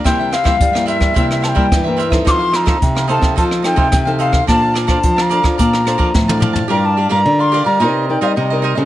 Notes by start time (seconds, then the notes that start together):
0.04 C3 G3 A#3 E4 A#4 C5 E5 G5, kick, cross-stick, closed hi-hat
0.19 A#4 C5 E5
0.31 E4 A#4 C5 E5 F5, cross-stick, closed hi-hat
0.44 G3 A#3 E4 A#4 C5 E5, kick, cross-stick
0.60 G2 G3, kick, closed hi-hat
0.73 G3 A#3 E4 A#4 C5 E5, cross-stick, closed hi-hat
0.86 E4 A#4 C5 E5, closed hi-hat
1.00 G3, kick, cross-stick
1.14 C3 G3 A#3 E4 A#4 C5 E5, kick, closed hi-hat
1.31 E5, cross-stick
1.41 E4 A#4 C5 E5 A5, cross-stick, closed hi-hat
1.49 G5
1.55 G3 A#3 E4 A#4 C5 E5, kick
1.72 G2 E3, kick, cross-stick, closed hi-hat
1.84 G3 A#3 A#4 C5 E5
1.88 E4
1.97 E4 A#4 C5 E5, closed hi-hat
2.10 C4 D#4 A4 A#4 C5 E5, kick, cross-stick, closed hi-hat
2.25 F3 D#4 A4 C5 F5 D6, kick, cross-stick, closed hi-hat
2.31 C6
2.39 A4 C5 F5
2.52 D#4 A4 C5 F5, cross-stick, closed hi-hat
2.56 A#5
2.66 C4 D#4 A4 C5 F5, kick, cross-stick
2.82 C3, kick, closed hi-hat
2.95 A4 C5 F5, cross-stick
3.08 C4 D#4 A4 C5 F5 A5, closed hi-hat
3.21 C3, kick, cross-stick, closed hi-hat
3.36 F3 D#4 A4 C5 F5 A5, kick, closed hi-hat
3.51 cross-stick
3.62 C4 D#4 A4 C5 F5 G5, cross-stick, closed hi-hat
3.76 C3 D#4 A4 C5 F5, kick, closed hi-hat
3.92 C3, kick, cross-stick, closed hi-hat
4.05 C4 D#4 A4 C5 F5, closed hi-hat
4.19 D#4 A4 C5 F5, closed hi-hat
4.32 A4 C5 F5, kick, cross-stick
4.47 A#2 A#3 D4 A4 A#4 C5 D5 F5 A5, kick, cross-stick, closed hi-hat
4.62 D5 F5 A5
4.73 A#4 D5 F5 A5, cross-stick, closed hi-hat
4.85 D4 A4 A#4 D5 F5 A5, kick, cross-stick
4.90 C5
5.03 F3, kick, closed hi-hat
5.16 D5 F5 A5, cross-stick, closed hi-hat
5.22 A#5
5.29 D4 A4 A#4 C5 D5 F5 A5, closed hi-hat
5.43 F3, kick, cross-stick
5.58 A#2 A#3 A#4 D5 F5 A5 A#5, kick, closed hi-hat
5.73 cross-stick
5.85 D4 A4 A#4 C5 D5 F5 A5, cross-stick, closed hi-hat
5.98 F3 A#4 D5 F5 A5, kick
6.14 A2 F3, kick, snare
6.28 D4 A4 C5 D5 F5 A5, high tom
6.40 A#4 D5 F5 A5, mid tom
6.53 D5 F5 A5, floor tom
6.68 G2 G3 F4 G4 A#4 D5 F5 A#5
6.85 A5
6.97 G4 A#4 D5 F5
7.09 G2 F4 G4 A#4 D5 F5 A#5
7.26 D3
7.39 A#4 D5 F5 C6
7.52 F4 G4 A#4 D5 F5
7.64 G3 A#4 D5 F5 A#5
7.80 C3 C4 D#4 A#4 C5 D5 D#5
8.09 D#4 A#4 D5 G5
8.21 G3 D#4 A#4 C5 D#5 F5
8.27 D#5
8.36 C3 G3 D#4 A#4 C5 D#5
8.50 D#4 A#4 C5 D5 D#5
8.62 D#4 A#4 C5 D#5
8.75 C#3 C4 G4 A4 A#4 C5 D#5